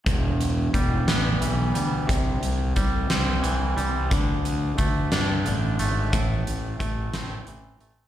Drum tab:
HH |xxxxxx|xxxxxx|xxxxxx|xxxxxx|
SD |---o--|---o--|---o--|---o--|
BD |o-o---|o-o---|o-o---|o-o---|